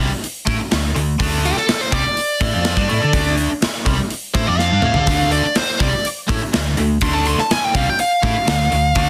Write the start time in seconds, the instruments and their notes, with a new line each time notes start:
0.00 open hi-hat
0.10 muted overdriven electric guitar stroke, muted fingered electric bass stroke, muted distorted electric guitar stroke
0.24 open hi-hat
0.47 fingered electric bass A2, distorted electric guitar A3 E4, kick, open hi-hat
0.59 muted overdriven electric guitar stroke, muted fingered electric bass stroke, muted distorted electric guitar stroke
0.72 fingered electric bass D2, distorted electric guitar D3 A3, snare, open hi-hat
0.96 fingered electric bass D2, distorted electric guitar D3 A3, open hi-hat
1.20 fingered electric bass D2, distorted electric guitar D3 A3 D4, kick, open hi-hat
1.45 lead electric guitar G4, open hi-hat
1.56 lead electric guitar A4, muted fingered electric bass stroke, muted overdriven electric guitar stroke, muted distorted electric guitar stroke, snare
1.67 muted overdriven electric guitar stroke, muted fingered electric bass stroke, muted distorted electric guitar stroke, snare, open hi-hat
1.81 lead electric guitar C5
1.92 fingered electric bass C2, distorted electric guitar C3 G3, lead electric guitar D5, kick, open hi-hat
2.03 muted overdriven electric guitar stroke, muted distorted electric guitar stroke, muted fingered electric bass stroke
2.17 open hi-hat
2.41 fingered electric bass A2, distorted electric guitar A3 E4, kick, open hi-hat
2.53 fingered electric bass F2, distorted electric guitar F3 C4 F4
2.65 snare, open hi-hat
2.77 fingered electric bass G2, distorted electric guitar G3 D4, kick
2.89 fingered electric bass A2, distorted electric guitar A3 E4, open hi-hat
3.02 fingered electric bass D3, distorted electric guitar D4 A4
3.13 fingered electric bass D2, distorted electric guitar D3 A3 D4, kick, open hi-hat
3.38 open hi-hat
3.51 muted overdriven electric guitar stroke, muted distorted electric guitar stroke
3.61 muted overdriven electric guitar stroke, muted distorted electric guitar stroke, muted fingered electric bass stroke, snare, open hi-hat
3.86 fingered electric bass C2, distorted electric guitar C3 G3, kick, open hi-hat
3.97 muted overdriven electric guitar stroke, muted distorted electric guitar stroke
4.10 open hi-hat
4.34 fingered electric bass A2, distorted electric guitar A3 E4, lead electric guitar C5, kick, open hi-hat
4.47 fingered electric bass F2, distorted electric guitar F3 C4 F4, lead electric guitar D5
4.59 lead electric guitar F5, snare
4.72 fingered electric bass G2, distorted electric guitar G3 D4
4.82 fingered electric bass A2, distorted electric guitar A3 E4, mid tom
4.94 fingered electric bass D3, distorted electric guitar D4 A4, floor tom
5.07 fingered electric bass D2, distorted electric guitar D3 A3 D4, kick, open hi-hat
5.31 lead electric guitar D5, open hi-hat
5.44 muted overdriven electric guitar stroke, muted distorted electric guitar stroke
5.55 lead electric guitar C5, muted overdriven electric guitar stroke, muted distorted electric guitar stroke, muted fingered electric bass stroke, snare, open hi-hat
5.80 fingered electric bass C2, distorted electric guitar C3 G3, lead electric guitar D5, kick, open hi-hat
5.92 muted distorted electric guitar stroke, muted overdriven electric guitar stroke, muted fingered electric bass stroke
6.05 open hi-hat
6.28 fingered electric bass A2, distorted electric guitar A3 E4, kick, open hi-hat
6.40 muted overdriven electric guitar stroke, muted distorted electric guitar stroke, muted fingered electric bass stroke
6.53 fingered electric bass D2, distorted electric guitar D3 A3, snare, open hi-hat
6.77 fingered electric bass D2, distorted electric guitar D3 A3, open hi-hat
7.01 fingered electric bass D2, distorted electric guitar D3 A3 D4, lead electric guitar C6, kick, open hi-hat
7.14 lead electric guitar A5
7.26 lead electric guitar C6, open hi-hat
7.38 lead electric guitar A5, muted overdriven electric guitar stroke, muted distorted electric guitar stroke, snare
7.50 lead electric guitar G#5, muted overdriven electric guitar stroke, muted fingered electric bass stroke, muted distorted electric guitar stroke, snare, open hi-hat
7.64 lead electric guitar G5
7.75 fingered electric bass C2, distorted electric guitar C3 G3, lead electric guitar F5, kick, open hi-hat
7.85 muted overdriven electric guitar stroke, muted fingered electric bass stroke, muted distorted electric guitar stroke
7.89 lead electric guitar G5
7.99 lead electric guitar F5, open hi-hat
8.23 fingered electric bass A2, distorted electric guitar A3 E4, kick, open hi-hat
8.33 muted overdriven electric guitar stroke, muted distorted electric guitar stroke, muted fingered electric bass stroke
8.47 fingered electric bass D2, distorted electric guitar D3 A3, snare, open hi-hat
8.72 fingered electric bass D2, distorted electric guitar D3 A3, open hi-hat
8.95 fingered electric bass D2, distorted electric guitar D3 A3 D4, kick, open hi-hat